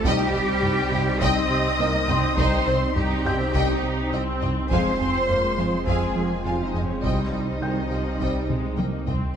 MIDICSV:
0, 0, Header, 1, 12, 480
1, 0, Start_track
1, 0, Key_signature, -3, "minor"
1, 0, Tempo, 582524
1, 40, Time_signature, 4, 2, 24, 8
1, 7714, End_track
2, 0, Start_track
2, 0, Title_t, "Felt piano"
2, 0, Program_c, 0, 0
2, 0, Control_c, 0, 64, 127
2, 0, Note_on_c, 0, 72, 51
2, 0, Note_on_c, 0, 84, 61
2, 56, Control_c, 0, 64, 0
2, 181, Control_c, 0, 64, 127
2, 255, Note_off_c, 0, 72, 0
2, 256, Note_off_c, 0, 84, 0
2, 1739, Note_on_c, 0, 84, 51
2, 2690, Note_on_c, 0, 91, 58
2, 3137, Note_off_c, 0, 84, 0
2, 3896, Control_c, 0, 64, 0
2, 4009, Control_c, 0, 64, 127
2, 4092, Note_off_c, 0, 91, 0
2, 5328, Note_on_c, 0, 80, 32
2, 5816, Control_c, 0, 64, 0
2, 5951, Control_c, 0, 64, 127
2, 6279, Note_on_c, 0, 79, 30
2, 6281, Note_on_c, 0, 91, 31
2, 6731, Note_off_c, 0, 80, 0
2, 7687, Note_off_c, 0, 79, 0
2, 7688, Note_off_c, 0, 91, 0
2, 7714, End_track
3, 0, Start_track
3, 0, Title_t, "Violin section"
3, 0, Program_c, 1, 48
3, 40, Note_on_c, 1, 79, 96
3, 981, Note_off_c, 1, 79, 0
3, 1000, Note_on_c, 1, 87, 101
3, 1941, Note_off_c, 1, 87, 0
3, 1961, Note_on_c, 1, 84, 92
3, 2441, Note_off_c, 1, 84, 0
3, 2445, Note_on_c, 1, 79, 85
3, 3403, Note_off_c, 1, 79, 0
3, 3880, Note_on_c, 1, 84, 93
3, 4807, Note_off_c, 1, 84, 0
3, 4838, Note_on_c, 1, 80, 69
3, 5319, Note_off_c, 1, 80, 0
3, 5319, Note_on_c, 1, 77, 57
3, 5480, Note_off_c, 1, 77, 0
3, 5480, Note_on_c, 1, 75, 51
3, 5631, Note_on_c, 1, 73, 49
3, 5640, Note_off_c, 1, 75, 0
3, 5792, Note_off_c, 1, 73, 0
3, 5796, Note_on_c, 1, 75, 52
3, 7478, Note_off_c, 1, 75, 0
3, 7714, End_track
4, 0, Start_track
4, 0, Title_t, "Violin section"
4, 0, Program_c, 2, 48
4, 56, Note_on_c, 2, 79, 81
4, 59, Note_on_c, 2, 75, 97
4, 272, Note_off_c, 2, 79, 0
4, 273, Note_off_c, 2, 75, 0
4, 299, Note_on_c, 2, 79, 61
4, 301, Note_on_c, 2, 75, 49
4, 365, Note_off_c, 2, 79, 0
4, 366, Note_off_c, 2, 75, 0
4, 769, Note_on_c, 2, 79, 54
4, 773, Note_on_c, 2, 75, 60
4, 835, Note_off_c, 2, 79, 0
4, 839, Note_off_c, 2, 75, 0
4, 1013, Note_on_c, 2, 79, 85
4, 1015, Note_on_c, 2, 75, 92
4, 1231, Note_off_c, 2, 75, 0
4, 1231, Note_off_c, 2, 79, 0
4, 1486, Note_on_c, 2, 75, 68
4, 1490, Note_on_c, 2, 79, 67
4, 1552, Note_off_c, 2, 75, 0
4, 1556, Note_off_c, 2, 79, 0
4, 1722, Note_on_c, 2, 75, 72
4, 1725, Note_on_c, 2, 79, 64
4, 1788, Note_off_c, 2, 75, 0
4, 1791, Note_off_c, 2, 79, 0
4, 1961, Note_on_c, 2, 75, 76
4, 1963, Note_on_c, 2, 79, 66
4, 2184, Note_off_c, 2, 75, 0
4, 2185, Note_off_c, 2, 79, 0
4, 2201, Note_on_c, 2, 75, 55
4, 2208, Note_on_c, 2, 79, 49
4, 2267, Note_off_c, 2, 75, 0
4, 2274, Note_off_c, 2, 79, 0
4, 2689, Note_on_c, 2, 79, 52
4, 2692, Note_on_c, 2, 75, 54
4, 2754, Note_off_c, 2, 79, 0
4, 2758, Note_off_c, 2, 75, 0
4, 2925, Note_on_c, 2, 75, 71
4, 2928, Note_on_c, 2, 79, 77
4, 3146, Note_off_c, 2, 75, 0
4, 3148, Note_off_c, 2, 79, 0
4, 3404, Note_on_c, 2, 75, 65
4, 3405, Note_on_c, 2, 79, 65
4, 3470, Note_off_c, 2, 75, 0
4, 3471, Note_off_c, 2, 79, 0
4, 3641, Note_on_c, 2, 79, 55
4, 3644, Note_on_c, 2, 75, 53
4, 3707, Note_off_c, 2, 79, 0
4, 3710, Note_off_c, 2, 75, 0
4, 3887, Note_on_c, 2, 77, 63
4, 3887, Note_on_c, 2, 80, 73
4, 4107, Note_off_c, 2, 77, 0
4, 4107, Note_off_c, 2, 80, 0
4, 4121, Note_on_c, 2, 77, 51
4, 4123, Note_on_c, 2, 80, 49
4, 4187, Note_off_c, 2, 77, 0
4, 4189, Note_off_c, 2, 80, 0
4, 4607, Note_on_c, 2, 77, 43
4, 4607, Note_on_c, 2, 80, 41
4, 4673, Note_off_c, 2, 77, 0
4, 4673, Note_off_c, 2, 80, 0
4, 4851, Note_on_c, 2, 80, 63
4, 4854, Note_on_c, 2, 77, 59
4, 5069, Note_off_c, 2, 80, 0
4, 5071, Note_off_c, 2, 77, 0
4, 5323, Note_on_c, 2, 80, 49
4, 5325, Note_on_c, 2, 77, 45
4, 5389, Note_off_c, 2, 80, 0
4, 5391, Note_off_c, 2, 77, 0
4, 5569, Note_on_c, 2, 77, 42
4, 5569, Note_on_c, 2, 80, 41
4, 5635, Note_off_c, 2, 77, 0
4, 5635, Note_off_c, 2, 80, 0
4, 5805, Note_on_c, 2, 75, 52
4, 5808, Note_on_c, 2, 79, 48
4, 6026, Note_off_c, 2, 75, 0
4, 6028, Note_off_c, 2, 79, 0
4, 6037, Note_on_c, 2, 79, 33
4, 6039, Note_on_c, 2, 75, 34
4, 6103, Note_off_c, 2, 79, 0
4, 6105, Note_off_c, 2, 75, 0
4, 6519, Note_on_c, 2, 79, 36
4, 6522, Note_on_c, 2, 75, 37
4, 6585, Note_off_c, 2, 79, 0
4, 6587, Note_off_c, 2, 75, 0
4, 6763, Note_on_c, 2, 79, 42
4, 6764, Note_on_c, 2, 75, 47
4, 6985, Note_off_c, 2, 79, 0
4, 6986, Note_off_c, 2, 75, 0
4, 7237, Note_on_c, 2, 79, 41
4, 7244, Note_on_c, 2, 75, 38
4, 7303, Note_off_c, 2, 79, 0
4, 7309, Note_off_c, 2, 75, 0
4, 7483, Note_on_c, 2, 79, 40
4, 7484, Note_on_c, 2, 75, 37
4, 7549, Note_off_c, 2, 79, 0
4, 7550, Note_off_c, 2, 75, 0
4, 7714, End_track
5, 0, Start_track
5, 0, Title_t, "Cello section"
5, 0, Program_c, 3, 48
5, 39, Note_on_c, 3, 67, 112
5, 1000, Note_off_c, 3, 67, 0
5, 1003, Note_on_c, 3, 75, 110
5, 1962, Note_off_c, 3, 75, 0
5, 1962, Note_on_c, 3, 72, 110
5, 2432, Note_off_c, 3, 72, 0
5, 2444, Note_on_c, 3, 67, 85
5, 3383, Note_off_c, 3, 67, 0
5, 3880, Note_on_c, 3, 72, 101
5, 4808, Note_off_c, 3, 72, 0
5, 4843, Note_on_c, 3, 68, 71
5, 5312, Note_off_c, 3, 68, 0
5, 5323, Note_on_c, 3, 65, 55
5, 5478, Note_off_c, 3, 65, 0
5, 5485, Note_on_c, 3, 63, 59
5, 5643, Note_off_c, 3, 63, 0
5, 5643, Note_on_c, 3, 61, 52
5, 5799, Note_off_c, 3, 61, 0
5, 5799, Note_on_c, 3, 63, 59
5, 7447, Note_off_c, 3, 63, 0
5, 7714, End_track
6, 0, Start_track
6, 0, Title_t, "Analog synth pad"
6, 0, Program_c, 4, 89
6, 50, Note_on_c, 4, 63, 82
6, 54, Note_on_c, 4, 60, 84
6, 55, Note_on_c, 4, 72, 76
6, 56, Note_on_c, 4, 55, 72
6, 3854, Note_off_c, 4, 60, 0
6, 3855, Note_off_c, 4, 72, 0
6, 3885, Note_off_c, 4, 63, 0
6, 3887, Note_on_c, 4, 65, 67
6, 3888, Note_off_c, 4, 55, 0
6, 3888, Note_on_c, 4, 60, 76
6, 3888, Note_on_c, 4, 72, 72
6, 3890, Note_on_c, 4, 56, 73
6, 5797, Note_on_c, 4, 55, 62
6, 5797, Note_on_c, 4, 63, 69
6, 5804, Note_off_c, 4, 65, 0
6, 5805, Note_off_c, 4, 56, 0
6, 7691, Note_off_c, 4, 60, 0
6, 7692, Note_off_c, 4, 72, 0
6, 7710, Note_off_c, 4, 63, 0
6, 7714, Note_off_c, 4, 55, 0
6, 7714, End_track
7, 0, Start_track
7, 0, Title_t, "French horn section"
7, 0, Program_c, 5, 60
7, 46, Note_on_c, 5, 55, 67
7, 49, Note_on_c, 5, 63, 74
7, 211, Note_off_c, 5, 55, 0
7, 213, Note_off_c, 5, 63, 0
7, 1007, Note_on_c, 5, 55, 71
7, 1009, Note_on_c, 5, 63, 74
7, 1172, Note_off_c, 5, 55, 0
7, 1174, Note_off_c, 5, 63, 0
7, 1960, Note_on_c, 5, 63, 61
7, 1965, Note_on_c, 5, 55, 59
7, 2127, Note_off_c, 5, 63, 0
7, 2131, Note_off_c, 5, 55, 0
7, 2920, Note_on_c, 5, 55, 61
7, 2920, Note_on_c, 5, 63, 65
7, 3088, Note_off_c, 5, 55, 0
7, 3088, Note_off_c, 5, 63, 0
7, 3876, Note_on_c, 5, 60, 63
7, 3877, Note_on_c, 5, 56, 57
7, 4045, Note_off_c, 5, 60, 0
7, 4046, Note_off_c, 5, 56, 0
7, 4839, Note_on_c, 5, 60, 50
7, 4841, Note_on_c, 5, 56, 49
7, 5007, Note_off_c, 5, 60, 0
7, 5009, Note_off_c, 5, 56, 0
7, 5796, Note_on_c, 5, 60, 42
7, 5800, Note_on_c, 5, 55, 44
7, 5965, Note_off_c, 5, 60, 0
7, 5967, Note_off_c, 5, 55, 0
7, 6756, Note_on_c, 5, 55, 42
7, 6759, Note_on_c, 5, 60, 43
7, 6925, Note_off_c, 5, 55, 0
7, 6927, Note_off_c, 5, 60, 0
7, 7714, End_track
8, 0, Start_track
8, 0, Title_t, "Viola section"
8, 0, Program_c, 6, 48
8, 40, Note_on_c, 6, 55, 87
8, 1000, Note_off_c, 6, 55, 0
8, 1007, Note_on_c, 6, 60, 88
8, 1480, Note_on_c, 6, 58, 75
8, 1484, Note_off_c, 6, 60, 0
8, 1720, Note_off_c, 6, 58, 0
8, 1722, Note_on_c, 6, 60, 82
8, 1954, Note_on_c, 6, 63, 79
8, 1961, Note_off_c, 6, 60, 0
8, 2193, Note_off_c, 6, 63, 0
8, 2201, Note_on_c, 6, 60, 73
8, 2441, Note_off_c, 6, 60, 0
8, 2444, Note_on_c, 6, 63, 78
8, 2677, Note_on_c, 6, 60, 69
8, 2678, Note_off_c, 6, 63, 0
8, 2915, Note_on_c, 6, 63, 76
8, 2919, Note_off_c, 6, 60, 0
8, 3398, Note_off_c, 6, 63, 0
8, 3398, Note_on_c, 6, 60, 77
8, 3879, Note_off_c, 6, 60, 0
8, 3886, Note_on_c, 6, 56, 64
8, 4118, Note_off_c, 6, 56, 0
8, 4125, Note_on_c, 6, 60, 67
8, 4358, Note_off_c, 6, 60, 0
8, 4360, Note_on_c, 6, 58, 59
8, 4595, Note_off_c, 6, 58, 0
8, 4608, Note_on_c, 6, 56, 53
8, 4834, Note_on_c, 6, 60, 63
8, 4844, Note_off_c, 6, 56, 0
8, 5078, Note_off_c, 6, 60, 0
8, 5079, Note_on_c, 6, 58, 53
8, 5316, Note_on_c, 6, 56, 52
8, 5320, Note_off_c, 6, 58, 0
8, 5788, Note_off_c, 6, 56, 0
8, 5801, Note_on_c, 6, 55, 47
8, 6233, Note_off_c, 6, 55, 0
8, 6280, Note_on_c, 6, 51, 48
8, 6504, Note_off_c, 6, 51, 0
8, 6523, Note_on_c, 6, 53, 48
8, 6757, Note_off_c, 6, 53, 0
8, 6760, Note_on_c, 6, 55, 56
8, 7000, Note_off_c, 6, 55, 0
8, 7000, Note_on_c, 6, 56, 53
8, 7236, Note_off_c, 6, 56, 0
8, 7240, Note_on_c, 6, 58, 48
8, 7480, Note_off_c, 6, 58, 0
8, 7489, Note_on_c, 6, 60, 51
8, 7714, Note_off_c, 6, 60, 0
8, 7714, End_track
9, 0, Start_track
9, 0, Title_t, "Analog synth bass"
9, 0, Program_c, 7, 38
9, 34, Note_on_c, 7, 36, 89
9, 180, Note_off_c, 7, 36, 0
9, 283, Note_on_c, 7, 36, 59
9, 426, Note_off_c, 7, 36, 0
9, 522, Note_on_c, 7, 36, 69
9, 666, Note_off_c, 7, 36, 0
9, 755, Note_on_c, 7, 48, 65
9, 900, Note_off_c, 7, 48, 0
9, 1001, Note_on_c, 7, 36, 80
9, 1145, Note_off_c, 7, 36, 0
9, 1240, Note_on_c, 7, 48, 60
9, 1384, Note_off_c, 7, 48, 0
9, 1476, Note_on_c, 7, 36, 63
9, 1622, Note_off_c, 7, 36, 0
9, 1712, Note_on_c, 7, 36, 62
9, 1858, Note_off_c, 7, 36, 0
9, 1955, Note_on_c, 7, 36, 82
9, 2101, Note_off_c, 7, 36, 0
9, 2201, Note_on_c, 7, 36, 55
9, 2345, Note_off_c, 7, 36, 0
9, 2440, Note_on_c, 7, 36, 62
9, 2584, Note_off_c, 7, 36, 0
9, 2680, Note_on_c, 7, 48, 63
9, 2825, Note_off_c, 7, 48, 0
9, 2921, Note_on_c, 7, 36, 81
9, 3065, Note_off_c, 7, 36, 0
9, 3159, Note_on_c, 7, 48, 56
9, 3303, Note_off_c, 7, 48, 0
9, 3403, Note_on_c, 7, 36, 60
9, 3546, Note_off_c, 7, 36, 0
9, 3645, Note_on_c, 7, 36, 64
9, 3788, Note_off_c, 7, 36, 0
9, 3885, Note_on_c, 7, 41, 85
9, 4028, Note_off_c, 7, 41, 0
9, 4126, Note_on_c, 7, 41, 50
9, 4268, Note_off_c, 7, 41, 0
9, 4359, Note_on_c, 7, 41, 65
9, 4503, Note_off_c, 7, 41, 0
9, 4599, Note_on_c, 7, 53, 60
9, 4743, Note_off_c, 7, 53, 0
9, 4839, Note_on_c, 7, 41, 72
9, 4983, Note_off_c, 7, 41, 0
9, 5075, Note_on_c, 7, 53, 54
9, 5221, Note_off_c, 7, 53, 0
9, 5318, Note_on_c, 7, 41, 61
9, 5462, Note_off_c, 7, 41, 0
9, 5555, Note_on_c, 7, 41, 55
9, 5700, Note_off_c, 7, 41, 0
9, 5800, Note_on_c, 7, 36, 69
9, 5944, Note_off_c, 7, 36, 0
9, 6035, Note_on_c, 7, 36, 55
9, 6181, Note_off_c, 7, 36, 0
9, 6277, Note_on_c, 7, 36, 61
9, 6422, Note_off_c, 7, 36, 0
9, 6516, Note_on_c, 7, 48, 51
9, 6661, Note_off_c, 7, 48, 0
9, 6753, Note_on_c, 7, 36, 76
9, 6899, Note_off_c, 7, 36, 0
9, 6991, Note_on_c, 7, 48, 53
9, 7138, Note_off_c, 7, 48, 0
9, 7228, Note_on_c, 7, 36, 58
9, 7376, Note_off_c, 7, 36, 0
9, 7474, Note_on_c, 7, 36, 55
9, 7620, Note_off_c, 7, 36, 0
9, 7714, End_track
10, 0, Start_track
10, 0, Title_t, "Double bass section"
10, 0, Program_c, 8, 48
10, 33, Note_on_c, 8, 36, 89
10, 99, Note_off_c, 8, 36, 0
10, 284, Note_on_c, 8, 36, 58
10, 350, Note_off_c, 8, 36, 0
10, 762, Note_on_c, 8, 36, 60
10, 828, Note_off_c, 8, 36, 0
10, 996, Note_on_c, 8, 36, 89
10, 1062, Note_off_c, 8, 36, 0
10, 1481, Note_on_c, 8, 36, 64
10, 1547, Note_off_c, 8, 36, 0
10, 1722, Note_on_c, 8, 36, 61
10, 1788, Note_off_c, 8, 36, 0
10, 1963, Note_on_c, 8, 36, 85
10, 2029, Note_off_c, 8, 36, 0
10, 2204, Note_on_c, 8, 36, 53
10, 2270, Note_off_c, 8, 36, 0
10, 2684, Note_on_c, 8, 36, 57
10, 2750, Note_off_c, 8, 36, 0
10, 2920, Note_on_c, 8, 36, 75
10, 2986, Note_off_c, 8, 36, 0
10, 3403, Note_on_c, 8, 36, 50
10, 3469, Note_off_c, 8, 36, 0
10, 3642, Note_on_c, 8, 36, 54
10, 3708, Note_off_c, 8, 36, 0
10, 3880, Note_on_c, 8, 41, 83
10, 3946, Note_off_c, 8, 41, 0
10, 4119, Note_on_c, 8, 41, 46
10, 4185, Note_off_c, 8, 41, 0
10, 4602, Note_on_c, 8, 41, 46
10, 4668, Note_off_c, 8, 41, 0
10, 4842, Note_on_c, 8, 41, 58
10, 4907, Note_off_c, 8, 41, 0
10, 5322, Note_on_c, 8, 41, 36
10, 5388, Note_off_c, 8, 41, 0
10, 5555, Note_on_c, 8, 41, 42
10, 5621, Note_off_c, 8, 41, 0
10, 5795, Note_on_c, 8, 36, 53
10, 5861, Note_off_c, 8, 36, 0
10, 6033, Note_on_c, 8, 36, 36
10, 6099, Note_off_c, 8, 36, 0
10, 6519, Note_on_c, 8, 36, 37
10, 6585, Note_off_c, 8, 36, 0
10, 6752, Note_on_c, 8, 36, 53
10, 6818, Note_off_c, 8, 36, 0
10, 7234, Note_on_c, 8, 36, 34
10, 7300, Note_off_c, 8, 36, 0
10, 7476, Note_on_c, 8, 36, 36
10, 7542, Note_off_c, 8, 36, 0
10, 7714, End_track
11, 0, Start_track
11, 0, Title_t, "Sub bass"
11, 0, Program_c, 10, 38
11, 39, Note_on_c, 10, 36, 74
11, 3882, Note_on_c, 10, 29, 67
11, 3894, Note_off_c, 10, 36, 0
11, 5797, Note_on_c, 10, 36, 64
11, 5809, Note_off_c, 10, 29, 0
11, 7714, Note_off_c, 10, 36, 0
11, 7714, End_track
12, 0, Start_track
12, 0, Title_t, "Taiko and cinematic ensemble drums"
12, 40, Note_on_c, 9, 41, 97
12, 123, Note_off_c, 9, 41, 0
12, 519, Note_on_c, 9, 45, 56
12, 601, Note_off_c, 9, 45, 0
12, 762, Note_on_c, 9, 45, 47
12, 844, Note_off_c, 9, 45, 0
12, 1002, Note_on_c, 9, 41, 78
12, 1085, Note_off_c, 9, 41, 0
12, 1723, Note_on_c, 9, 45, 45
12, 1806, Note_off_c, 9, 45, 0
12, 1959, Note_on_c, 9, 41, 101
12, 2041, Note_off_c, 9, 41, 0
12, 2442, Note_on_c, 9, 45, 58
12, 2524, Note_off_c, 9, 45, 0
12, 2684, Note_on_c, 9, 45, 45
12, 2766, Note_off_c, 9, 45, 0
12, 2924, Note_on_c, 9, 41, 70
12, 3006, Note_off_c, 9, 41, 0
12, 3644, Note_on_c, 9, 45, 45
12, 3726, Note_off_c, 9, 45, 0
12, 3882, Note_on_c, 9, 41, 90
12, 3965, Note_off_c, 9, 41, 0
12, 4366, Note_on_c, 9, 45, 52
12, 4448, Note_off_c, 9, 45, 0
12, 4605, Note_on_c, 9, 45, 42
12, 4687, Note_off_c, 9, 45, 0
12, 4840, Note_on_c, 9, 41, 72
12, 4923, Note_off_c, 9, 41, 0
12, 5562, Note_on_c, 9, 45, 43
12, 5644, Note_off_c, 9, 45, 0
12, 5803, Note_on_c, 9, 41, 85
12, 5885, Note_off_c, 9, 41, 0
12, 6762, Note_on_c, 9, 41, 61
12, 6845, Note_off_c, 9, 41, 0
12, 7004, Note_on_c, 9, 47, 70
12, 7086, Note_off_c, 9, 47, 0
12, 7240, Note_on_c, 9, 48, 69
12, 7323, Note_off_c, 9, 48, 0
12, 7479, Note_on_c, 9, 43, 72
12, 7562, Note_off_c, 9, 43, 0
12, 7714, End_track
0, 0, End_of_file